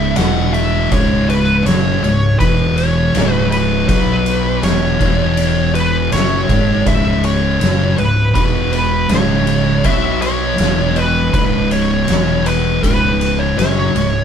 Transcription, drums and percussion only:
0.16 snare loud
0.16 ride medium
0.54 ride medium
0.92 kick loud
0.92 ride medium
1.30 ride medium
1.66 snare loud
1.66 ride medium
2.04 ride medium
2.40 kick loud
2.40 ride medium
2.78 ride medium
3.15 snare loud
3.15 ride loud
3.52 ride medium
3.89 kick loud
3.89 ride medium
4.26 ride medium
4.63 snare loud
4.63 ride medium
5.01 kick loud
5.01 ride medium
5.37 ride loud
5.75 ride medium
6.12 snare loud
6.12 ride medium
6.49 kick loud
6.49 ride medium
6.86 kick loud
6.86 ride medium
7.24 ride medium
7.61 snare loud
7.61 ride medium
7.98 ride medium
8.35 kick loud
8.35 ride medium
8.73 ride medium
9.09 snare loud
9.09 ride medium
9.47 ride medium
9.84 kick loud
9.84 ride medium
10.22 ride medium
10.58 snare loud
10.58 ride loud
10.96 ride medium
11.34 kick loud
11.34 ride medium
11.71 ride medium
12.08 snare loud
12.08 ride medium
12.46 ride medium
12.83 kick medium
12.83 ride loud
13.21 ride medium
13.59 snare loud
13.59 ride medium
13.96 ride medium

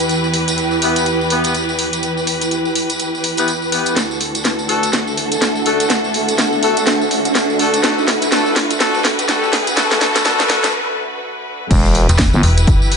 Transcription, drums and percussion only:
0.09 closed hi-hat soft
0.09 tambourine medium
0.24 tambourine soft
0.34 open hi-hat loud
0.48 closed hi-hat medium
0.48 tambourine medium
0.58 closed hi-hat soft
0.58 tambourine medium
0.71 tambourine soft
0.82 open hi-hat loud
0.96 closed hi-hat medium
0.96 tambourine medium
1.06 closed hi-hat soft
1.06 tambourine medium
1.21 tambourine soft
1.30 open hi-hat loud
1.44 closed hi-hat medium
1.44 tambourine medium
1.55 closed hi-hat soft
1.55 tambourine medium
1.69 tambourine soft
1.79 open hi-hat loud
1.93 closed hi-hat medium
1.93 tambourine medium
2.03 closed hi-hat soft
2.03 tambourine medium
2.17 tambourine soft
2.27 open hi-hat loud
2.41 closed hi-hat medium
2.41 tambourine medium
2.51 closed hi-hat soft
2.51 tambourine medium
2.65 tambourine soft
2.75 open hi-hat loud
2.90 closed hi-hat medium
2.90 tambourine medium
2.99 closed hi-hat soft
2.99 tambourine medium
3.15 tambourine soft
3.24 open hi-hat loud
3.37 closed hi-hat medium
3.37 tambourine medium
3.48 closed hi-hat soft
3.48 tambourine medium
3.62 tambourine soft
3.72 open hi-hat loud
3.86 closed hi-hat medium
3.86 tambourine medium
3.96 snare soft
3.96 closed hi-hat soft
3.96 tambourine medium
4.11 tambourine soft
4.21 open hi-hat loud
4.35 closed hi-hat medium
4.35 tambourine medium
4.45 snare soft
4.45 closed hi-hat soft
4.45 tambourine medium
4.59 tambourine soft
4.69 open hi-hat loud
4.83 closed hi-hat medium
4.83 tambourine medium
4.93 snare medium
4.93 closed hi-hat soft
4.93 tambourine medium
5.07 tambourine soft
5.17 open hi-hat loud
5.32 closed hi-hat medium
5.32 tambourine medium
5.42 snare medium
5.42 closed hi-hat medium
5.42 tambourine medium
5.55 tambourine soft
5.66 open hi-hat loud
5.80 closed hi-hat medium
5.80 tambourine medium
5.90 snare medium
5.90 closed hi-hat medium
5.90 tambourine medium
6.04 tambourine soft
6.14 open hi-hat medium
6.28 closed hi-hat medium
6.28 tambourine medium
6.38 snare medium
6.38 closed hi-hat soft
6.38 tambourine medium
6.53 tambourine soft
6.63 open hi-hat loud
6.77 closed hi-hat medium
6.77 tambourine medium
6.86 snare medium
6.86 closed hi-hat medium
6.86 tambourine medium
7.01 tambourine soft
7.11 open hi-hat loud
7.25 closed hi-hat medium
7.25 tambourine medium
7.35 snare medium
7.35 closed hi-hat medium
7.35 tambourine medium
7.50 tambourine soft
7.59 open hi-hat loud
7.74 closed hi-hat medium
7.74 tambourine medium
7.83 snare medium
7.83 closed hi-hat medium
7.83 tambourine medium
7.98 tambourine soft
8.08 snare medium
8.08 open hi-hat medium
8.22 closed hi-hat medium
8.22 tambourine medium
8.32 snare medium
8.32 closed hi-hat medium
8.32 tambourine medium
8.46 tambourine soft
8.56 snare medium
8.56 open hi-hat loud
8.70 closed hi-hat medium
8.70 tambourine medium
8.80 snare medium
8.80 closed hi-hat medium
8.80 tambourine medium
8.95 tambourine soft
9.05 snare medium
9.05 open hi-hat loud
9.19 closed hi-hat medium
9.19 tambourine medium
9.28 snare medium
9.28 closed hi-hat medium
9.28 tambourine medium
9.44 tambourine soft
9.53 snare medium
9.53 open hi-hat loud
9.67 closed hi-hat medium
9.67 tambourine medium
9.76 snare medium
9.76 closed hi-hat medium
9.76 tambourine medium
9.91 snare medium
9.91 tambourine soft
10.01 snare medium
10.01 open hi-hat loud
10.16 snare medium
10.16 closed hi-hat medium
10.16 tambourine medium
10.25 snare medium
10.25 closed hi-hat medium
10.25 tambourine medium
10.40 snare medium
10.40 tambourine soft
10.50 snare loud
10.50 open hi-hat loud
10.64 snare medium
10.64 closed hi-hat medium
10.64 tambourine medium
11.71 kick loud
11.71 closed hi-hat medium
11.71 crash loud
11.71 tambourine medium
11.86 tambourine soft
11.95 open hi-hat loud
12.09 closed hi-hat medium
12.09 tambourine medium
12.19 kick loud
12.19 snare loud
12.19 closed hi-hat medium
12.19 tambourine medium
12.34 tambourine soft
12.43 open hi-hat loud
12.58 closed hi-hat medium
12.58 tambourine medium
12.67 kick loud
12.67 closed hi-hat medium
12.67 tambourine medium
12.82 tambourine soft
12.92 open hi-hat loud

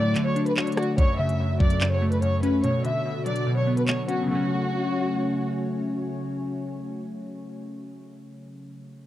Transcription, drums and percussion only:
0.15 clap medium
0.15 closed hi-hat medium
0.36 closed hi-hat medium
0.46 closed hi-hat medium
0.57 clap loud
0.67 closed hi-hat medium
0.72 closed hi-hat medium
0.77 cross-stick loud
0.77 closed hi-hat medium
0.83 closed hi-hat medium
0.98 kick loud
0.98 closed hi-hat medium
1.29 closed hi-hat medium
1.60 kick loud
1.70 closed hi-hat medium
1.81 clap loud
1.81 closed hi-hat medium
2.12 closed hi-hat medium
2.22 closed hi-hat medium
2.43 closed hi-hat medium
2.64 closed hi-hat medium
2.85 closed hi-hat medium
3.26 closed hi-hat medium
3.36 closed hi-hat medium
3.77 closed hi-hat medium
3.88 clap loud
3.88 closed hi-hat medium
4.09 closed hi-hat medium

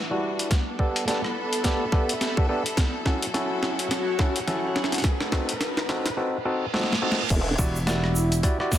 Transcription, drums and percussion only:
0.39 closed hi-hat medium
0.51 kick loud
0.51 snare medium
0.51 closed hi-hat medium
0.79 kick medium
0.96 closed hi-hat medium
1.08 snare medium
1.08 closed hi-hat medium
1.24 cross-stick medium
1.53 closed hi-hat medium
1.64 kick medium
1.64 snare medium
1.64 closed hi-hat medium
1.92 kick loud
1.92 cross-stick soft
2.09 closed hi-hat medium
2.21 snare medium
2.21 closed hi-hat medium
2.37 kick loud
2.66 closed hi-hat medium
2.77 kick loud
2.77 snare medium
2.77 closed hi-hat medium
3.06 kick medium
3.06 snare medium
3.22 closed hi-hat medium
3.34 snare medium
3.34 closed hi-hat medium
3.63 snare medium
3.79 closed hi-hat medium
3.91 snare medium
3.91 closed hi-hat medium
4.19 kick loud
4.19 snare medium
4.36 closed hi-hat medium
4.48 snare medium
4.48 closed hi-hat medium
4.76 snare medium
4.84 snare medium
4.92 snare medium
4.92 closed hi-hat medium
4.94 snare soft
4.94 closed hi-hat medium
4.98 closed hi-hat soft
5.00 closed hi-hat soft
5.02 kick loud
5.02 snare medium
5.02 closed hi-hat soft
5.04 closed hi-hat soft
5.21 snare medium
5.32 kick medium
5.32 snare medium
5.49 closed hi-hat medium
5.61 snare loud
5.61 closed hi-hat medium
5.77 snare medium
5.89 snare medium
6.06 snare medium
6.06 closed hi-hat medium
6.74 snare medium
6.79 snare medium
6.83 snare soft
6.90 snare soft
6.93 snare medium
6.98 snare soft
7.12 snare loud
7.30 kick loud
7.30 closed hi-hat medium
7.30 crash loud
7.30 shaker soft
7.58 kick loud
7.58 shaker medium
7.76 shaker medium
7.87 snare loud
7.87 closed hi-hat medium
7.87 shaker soft
8.04 cross-stick medium
8.16 shaker medium
8.32 closed hi-hat medium
8.32 shaker medium
8.43 kick loud
8.43 closed hi-hat medium
8.43 shaker soft
8.60 cross-stick soft
8.72 kick medium
8.72 snare medium
8.72 shaker medium

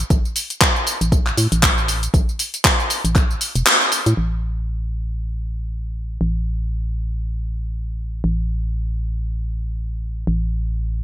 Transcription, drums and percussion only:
0.10 kick loud
0.10 closed hi-hat medium
0.10 tambourine soft
0.25 tambourine soft
0.36 open hi-hat loud
0.36 tambourine medium
0.50 closed hi-hat medium
0.50 tambourine soft
0.61 kick loud
0.61 clap loud
0.61 closed hi-hat medium
0.61 tambourine soft
0.76 tambourine soft
0.87 open hi-hat loud
0.87 tambourine medium
1.01 closed hi-hat medium
1.01 tambourine soft
1.12 kick loud
1.12 closed hi-hat medium
1.12 tambourine soft
1.26 clap soft
1.26 tambourine soft
1.37 open hi-hat medium
1.37 tambourine medium
1.52 closed hi-hat medium
1.52 tambourine soft
1.63 kick loud
1.63 clap loud
1.63 closed hi-hat soft
1.63 tambourine soft
1.78 tambourine soft
1.88 open hi-hat loud
1.88 tambourine medium
2.03 closed hi-hat medium
2.03 tambourine soft
2.14 kick loud
2.14 closed hi-hat medium
2.14 tambourine soft
2.29 tambourine soft
2.39 open hi-hat loud
2.39 tambourine medium
2.54 closed hi-hat medium
2.54 tambourine soft
2.65 kick loud
2.65 clap loud
2.65 closed hi-hat medium
2.65 tambourine soft
2.80 tambourine soft
2.90 open hi-hat loud
2.90 tambourine medium
3.05 closed hi-hat medium
3.05 tambourine soft
3.15 kick loud
3.15 clap soft
3.15 closed hi-hat medium
3.15 tambourine soft
3.31 tambourine soft
3.41 open hi-hat loud
3.41 tambourine medium
3.55 closed hi-hat medium
3.55 tambourine soft
3.66 clap loud
3.66 closed hi-hat medium
3.66 tambourine soft
3.81 tambourine soft
3.92 open hi-hat loud
3.92 tambourine medium
4.06 closed hi-hat medium
4.06 tambourine soft

